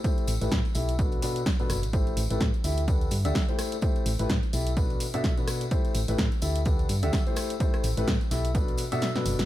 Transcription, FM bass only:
X:1
M:4/4
L:1/16
Q:"Swing 16ths" 1/4=127
K:Ador
V:1 name="FM bass" clef=bass
z2 A,,, A,,, A,, z B,,,4 z4 F,,, A,,,- | A,,,2 A,,, A,,, A,, z D,,4 G,, D,, z4 | z2 A,,, A,,, A,, z B,,,4 z6 | z2 A,,, A,,, A,, z D,,4 G,, D,, z4 |
z2 A,,, A,,, A,, z B,,,4 z4 F,,, F,,, |]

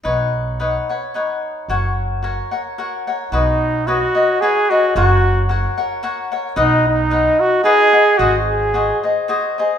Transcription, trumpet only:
X:1
M:3/4
L:1/8
Q:"Swing" 1/4=110
K:B
V:1 name="Trumpet"
z6 | z6 | D2 F2 G F | F2 z4 |
D D2 F G2 | F G2 z3 |]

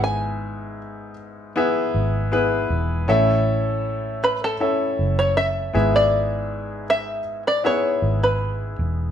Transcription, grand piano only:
X:1
M:4/4
L:1/8
Q:1/4=79
K:A
V:1 name="Grand piano"
[B,EGe]3 z [B,EGe]2 [B,EGB]2 | [CEAe]4 [CEAe]3 [B,EGe]- | [B,EGe]3 z [B,EGe]4 |]
V:2 name="Grand piano" clef=bass
G,,2 z6 | A,,3 z4 G,,- | G,,2 z6 |]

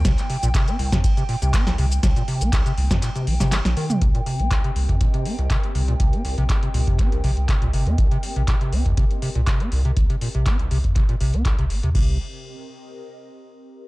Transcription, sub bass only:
X:1
M:4/4
L:1/16
Q:"Swing 16ths" 1/4=121
K:Cm
V:1 name="Sub bass" clef=bass
C,, z2 B,,, z2 C,, F,, z3 C,, z2 C,,2 | C,, z2 B,,, z2 C,, F,, z2 B,,, G,,,2 B,,, z2 | C,, z2 B,,, z2 C,, F,, z3 C,, z2 C,,2 | C,, z2 B,,, z2 C,, F,, z2 B,,, C,, z C,, G,,, E,, |
C,, z2 B,,, z2 C,, F,, z3 C,, z2 C,,2 | C,, z2 B,,, z2 C,, F,, z2 B,,, C,, z C,, G,,, E,, | C,,2 z12 z2 |]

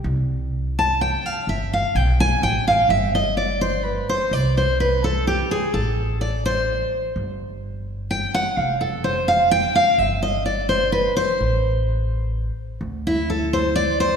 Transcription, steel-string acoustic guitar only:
X:1
M:3/4
L:1/8
Q:1/4=127
K:Am
V:1 name="Steel-string acoustic guitar"
z3 a g f | e f g _a g f | e _e d c B c | d c B A G _A |
A2 d c3 | z4 g ^f | f A c f g f | e _e d c B c- |
c4 z2 | z E A c d c |]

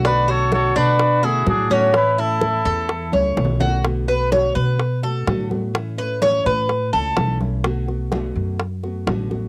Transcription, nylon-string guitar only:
X:1
M:4/4
L:1/8
Q:1/4=126
K:Bdor
V:1 name="Nylon-string guitar"
[B,,D,A,B,F]4 z [D,A,B,F] [D,A,B,F] [D,A,B,F] | [E,A,CE]4 z [A,CE] [E,A,CE] [A,CE] | [B,,D,A,B,F] [A,B,F] [B,,D,A,B,F]2 z [A,B,F] [B,,D,A,B,F] [A,B,F] | [E,A,CE] [A,CE] [E,A,CE]2 z [A,CE] [E,A,CE] [A,CE] |
[B,,D,A,B,F] [A,B,F] [B,,D,A,B,F]2 z [A,B,F] [B,,D,A,B,F] [A,B,F] |]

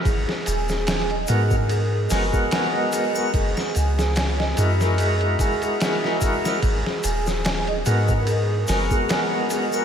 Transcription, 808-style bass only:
X:1
M:4/4
L:1/8
Q:"Swing 16ths" 1/4=73
K:G#m
V:1 name="808-style bass" clef=bass
G,,, D,,,2 G,,2 F,,, z2 | F,,, C,,2 F,,2 z3 | G,,, D,,,2 G,,2 F,,, z2 |]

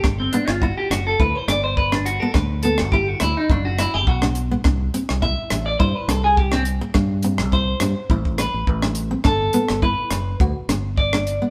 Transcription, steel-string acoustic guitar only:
X:1
M:4/4
L:1/16
Q:"Swing 16ths" 1/4=104
K:G
V:1 name="Steel-string acoustic guitar"
D2 B,2 E2 D2 E2 D2 z D2 B, | D2 B,2 E2 D2 z2 D2 z D2 B, | D2 C2 E2 D2 E2 D2 z D2 z | D2 C2 E2 D2 E2 D2 z D2 C |
D2 B,2 E2 D2 F2 D2 z D2 B, |]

